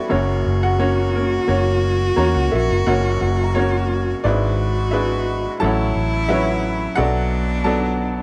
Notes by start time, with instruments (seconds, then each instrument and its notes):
Already playing: upright piano E2 E3 G3 B3 C#4 D4 E4 F#4 G4 B4 C#5 D5 F#5, cello F#4, felt piano D5 E5
0.09 upright piano F#1 F#2 A#3 C#4 F#4 A#4 C#5, fingered electric bass F#1, cello F#4
0.46 fingered electric bass F#1
0.63 upright piano F#4 F#5
0.79 upright piano A#3 C#4 F#4 C#5
1.15 upright piano A#3 C#4 A#4
1.47 fingered electric bass F#1, upright piano A#3 C#4 F#4 C#5
2.16 fingered electric bass E2, upright piano A#3 C#4 F#4 C#5 A#5
2.34 fingered electric bass C#2, upright piano F#5
2.52 fingered electric bass A#1, felt piano A#4, upright piano E5
2.71 fingered electric bass F#1
2.86 fingered electric bass F#1, upright piano F#1 F#2 A#3 C#4 F#4 A#4 C#5 F#5
3.21 fingered electric bass F#1, felt piano F#5
3.44 felt piano A#5
3.55 upright piano A#3 C#4 F#4 A#4 C#5
4.24 upright piano G#1 G#2 G#3 D4 E4 B4 D5, fingered electric bass G#1, cello F#4
4.91 upright piano G#3 D4 E4 B4 E5
5.60 upright piano A1 A2 F#3 C#4 E4 A4 A5, fingered electric bass A1, cello E4
5.64 upright piano C#5 F#5
5.96 fingered electric bass A1
6.29 upright piano F#3 C#4 E4 B4 C#5 E5
6.95 upright piano B1 B2 F#3 B3 D4 A4 F#5, fingered electric bass B1, cello D4, felt piano E5
7.00 upright piano F#4 D5
7.64 upright piano F#3 B3 D4 A4 D5 A5